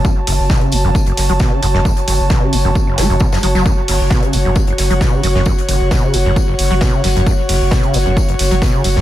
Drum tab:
HH |--o--xo--xox--o-|-xo---o---o---o-|--o--xo--xox--o-|-xo---o---o---ox|
TB |x---x-x-x-x-x-x-|x-x-x-x-x-x-xx-x|x---x-x-x-x-x-x-|x-x-x-x-x-x-x-x-|
SD |----o-----o-o--o|----o-----o--o--|----o-----o-o--o|----o-------o-o-|
BD |o---o---o---o---|o---o---o---o---|o---o---o---o---|o---o---o---o---|

HH |--o--xo--xox--o-|
TB |x---x-x-x-x-x-x-|
SD |----o-----o-o--o|
BD |o---o---o---o---|